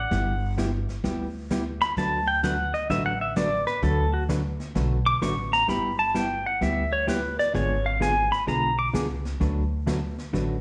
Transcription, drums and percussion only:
0.11 brush sweep medium
0.11 kick soft
0.11 snare soft
0.58 kick soft
0.58 snare medium
0.58 hi-hat pedal medium
0.89 snare soft
1.04 brush sweep medium
1.04 kick soft
1.04 snare soft
1.50 kick soft
1.50 snare medium
1.50 hi-hat pedal medium
1.81 snare soft
1.97 brush sweep soft
1.97 kick soft
1.97 snare soft
2.43 kick soft
2.43 snare medium
2.43 hi-hat pedal medium
2.74 snare soft
2.90 brush sweep medium
2.90 kick soft
2.90 snare soft
3.36 kick soft
3.36 snare medium
3.36 hi-hat pedal medium
3.67 snare soft
3.82 brush sweep medium
3.82 kick soft
3.82 snare soft
4.29 kick soft
4.29 snare medium
4.29 hi-hat pedal medium
4.60 snare soft
4.75 brush sweep medium
4.75 kick soft
4.75 snare medium
5.22 kick soft
5.22 snare medium
5.22 hi-hat pedal medium
5.53 snare soft
5.68 brush sweep medium
5.68 kick soft
5.68 snare soft
6.15 kick soft
6.15 snare medium
6.15 hi-hat pedal medium
6.61 brush sweep medium
6.61 kick soft
6.61 snare soft
7.08 kick soft
7.08 snare medium
7.08 hi-hat pedal medium
7.39 snare soft
7.55 brush sweep medium
7.55 kick soft
7.55 snare soft
8.01 kick soft
8.01 snare medium
8.01 hi-hat pedal medium
8.32 snare soft
8.48 brush sweep medium
8.48 kick soft
8.48 snare soft
8.94 kick soft
8.94 snare medium
8.94 hi-hat pedal medium
9.25 snare soft
9.41 brush sweep soft
9.41 kick soft
9.41 snare soft
9.87 kick soft
9.87 snare medium
9.87 hi-hat pedal medium
10.18 snare soft
10.34 brush sweep soft
10.34 kick soft
10.34 snare soft

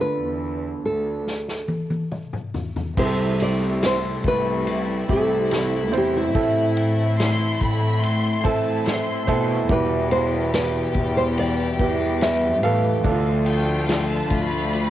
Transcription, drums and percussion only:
1.27 snare soft
1.48 snare soft
1.68 high tom medium
1.90 high tom medium
2.12 mid tom medium
2.33 mid tom medium
2.54 floor tom medium
2.76 floor tom medium
2.97 kick loud
2.97 crash loud
3.40 ride medium
3.83 snare loud
3.83 ride medium
4.24 kick medium
4.24 ride medium
4.67 ride medium
5.09 kick medium
5.09 ride medium
5.51 snare loud
5.51 ride medium
5.93 ride medium
6.35 kick loud
6.35 ride medium
6.77 ride medium
7.20 snare loud
7.20 ride medium
7.61 kick medium
7.61 ride medium
8.03 ride medium
8.45 kick medium
8.45 ride medium
8.86 snare loud
8.86 ride medium
9.28 kick medium
9.28 ride medium
9.69 kick loud
9.69 ride medium
10.11 ride medium
10.53 snare loud
10.53 ride medium
10.94 kick medium
10.94 ride medium
11.38 ride medium
11.79 kick medium
11.79 ride medium
12.21 snare loud
12.21 ride medium
12.63 ride medium
13.04 kick loud
13.04 ride medium
13.46 ride medium
13.89 snare loud
13.89 ride medium
14.30 kick medium
14.30 ride medium
14.73 ride medium

